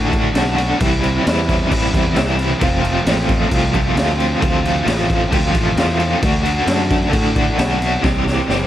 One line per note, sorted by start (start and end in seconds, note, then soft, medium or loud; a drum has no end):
0.00 0.28 A2 medium
0.00 0.32 D3 loud
0.00 0.13 A3 loud
0.00 0.10 D4 loud
0.09 0.35 D4 medium
0.09 0.37 F#4 medium
0.09 kick loud
0.09 crash medium
0.14 0.34 A3 medium
0.33 0.72 B1 medium
0.33 0.78 D3 medium
0.33 0.58 A3 medium
0.33 0.56 D4 medium
0.33 snare loud
0.33 crash medium
0.38 0.54 F#4 medium
0.55 0.79 A3 medium
0.55 0.78 D4 medium
0.55 0.77 F#4 medium
0.55 crash medium
0.78 1.18 C2 medium
0.78 1.24 C3 medium
0.78 1.22 E3 loud
0.78 1.03 G3 loud
0.78 1.02 C4 loud
0.78 0.99 E4 loud
0.78 kick loud
0.78 crash medium
1.00 1.26 C4 medium
1.00 1.26 E4 medium
1.00 crash medium
1.05 1.24 G3 medium
1.23 1.64 E2 medium
1.23 1.68 E3 medium
1.23 1.70 G3 medium
1.23 1.71 C4 medium
1.23 crash medium
1.27 1.72 E4 medium
1.27 snare loud
1.49 kick medium
1.49 crash medium
1.68 1.90 A1 loud
1.68 2.14 C3 loud
1.68 2.12 E3 loud
1.68 1.95 G3 loud
1.68 1.94 C4 medium
1.68 kick medium
1.68 crash loud
1.73 1.90 E4 loud
1.91 2.12 E2 medium
1.91 2.16 C4 medium
1.91 2.16 E4 medium
1.91 kick loud
1.91 crash medium
1.96 2.13 G3 medium
2.13 2.53 C2 medium
2.13 2.58 E3 medium
2.13 2.39 G3 medium
2.13 2.38 C4 medium
2.13 2.35 E4 medium
2.13 snare loud
2.13 crash medium
2.36 2.61 C4 medium
2.36 2.58 E4 medium
2.36 crash medium
2.40 2.60 G3 medium
2.58 2.99 F1 medium
2.58 3.47 F2 medium
2.58 3.05 C3 loud
2.58 2.85 F3 loud
2.58 2.83 A3 loud
2.58 2.82 C4 loud
2.58 kick loud
2.58 crash loud
2.62 2.80 F4 loud
2.80 3.04 A3 medium
2.80 3.05 C4 medium
2.80 3.06 F4 medium
2.85 3.02 F3 medium
2.85 crash medium
3.02 3.44 A1 medium
3.02 3.48 F3 medium
3.02 3.51 A3 medium
3.02 3.50 C4 medium
3.07 3.51 F4 medium
3.07 snare loud
3.07 crash medium
3.29 kick medium
3.29 crash medium
3.47 3.95 F2 medium
3.47 3.95 C3 loud
3.47 3.74 F3 loud
3.47 3.74 A3 loud
3.47 3.72 C4 medium
3.47 crash medium
3.52 3.89 C2 medium
3.52 3.70 F4 loud
3.52 kick medium
3.71 3.93 A3 medium
3.71 3.93 C4 medium
3.71 3.95 F4 medium
3.71 kick loud
3.71 crash medium
3.75 3.90 F3 medium
3.92 4.34 D2 medium
3.92 4.18 F3 medium
3.92 4.18 A3 medium
3.92 4.16 C4 medium
3.96 4.14 F4 medium
3.96 snare loud
3.96 crash medium
4.16 4.41 A3 medium
4.16 4.41 C4 medium
4.16 4.41 F4 medium
4.20 4.39 F3 medium
4.20 crash medium
4.38 4.85 F2 loud
4.38 4.86 C3 loud
4.38 4.66 F3 loud
4.38 4.65 A3 loud
4.42 4.80 D2 loud
4.42 4.63 C4 loud
4.42 4.61 F4 loud
4.42 kick loud
4.42 crash medium
4.63 4.85 A3 medium
4.63 4.85 C4 medium
4.63 4.86 F4 medium
4.63 crash medium
4.67 4.82 F3 medium
4.83 5.24 A1 medium
4.83 5.30 F3 medium
4.83 5.31 A3 medium
4.83 5.32 C4 medium
4.88 5.32 F4 medium
4.88 snare loud
4.88 crash medium
5.10 kick loud
5.10 crash medium
5.30 5.51 D2 loud
5.30 5.76 F2 loud
5.30 5.77 C3 medium
5.30 5.55 F3 medium
5.30 5.53 A3 loud
5.30 5.52 C4 loud
5.30 5.50 F4 loud
5.30 kick loud
5.30 crash medium
5.52 5.73 A1 loud
5.52 5.75 A3 medium
5.52 5.76 C4 medium
5.52 5.78 F4 medium
5.52 kick medium
5.52 crash medium
5.56 5.73 F3 medium
5.74 6.14 E2 loud
5.74 6.01 F3 medium
5.74 6.00 A3 medium
5.74 5.98 C4 medium
5.74 snare loud
5.74 crash medium
5.79 5.97 F4 medium
5.99 6.19 F3 medium
5.99 6.21 A3 medium
5.99 6.21 C4 medium
5.99 6.21 F4 medium
5.99 crash medium
6.20 6.61 D2 medium
6.20 6.65 D3 loud
6.20 6.46 A3 loud
6.20 6.43 D4 loud
6.20 kick loud
6.20 crash medium
6.24 6.41 F#4 loud
6.42 6.68 D4 medium
6.42 6.69 F#4 medium
6.42 crash medium
6.47 6.66 A3 medium
6.66 7.05 F#2 medium
6.66 7.08 D3 medium
6.66 7.10 A3 medium
6.66 7.12 D4 medium
6.66 snare loud
6.66 crash loud
6.70 7.13 F#4 medium
6.91 kick loud
6.91 crash medium
7.09 7.51 A2 medium
7.09 7.55 D3 loud
7.09 7.36 A3 loud
7.09 7.35 D4 loud
7.09 kick medium
7.09 crash medium
7.14 7.32 F#4 loud
7.33 7.58 D4 medium
7.33 7.59 F#4 medium
7.33 kick loud
7.33 crash medium
7.37 7.57 A3 medium
7.56 7.96 B1 medium
7.56 8.01 D3 medium
7.56 7.81 A3 medium
7.56 7.79 D4 medium
7.56 7.77 F#4 medium
7.56 snare loud
7.56 crash medium
7.79 8.03 A3 medium
7.79 8.02 D4 medium
7.79 8.01 F#4 medium
7.79 crash medium
8.02 8.41 C2 medium
8.02 8.48 C3 loud
8.02 8.45 E3 loud
8.02 8.28 G3 loud
8.02 8.26 C4 loud
8.02 kick loud
8.02 snare medium
8.06 8.23 G4 loud
8.24 8.48 C4 medium
8.24 8.49 G4 medium
8.24 snare medium
8.29 8.47 G3 medium
8.46 8.67 F#1 medium
8.46 8.67 E3 medium
8.46 8.67 G3 medium
8.46 8.67 C4 medium
8.46 8.67 G4 medium
8.46 snare medium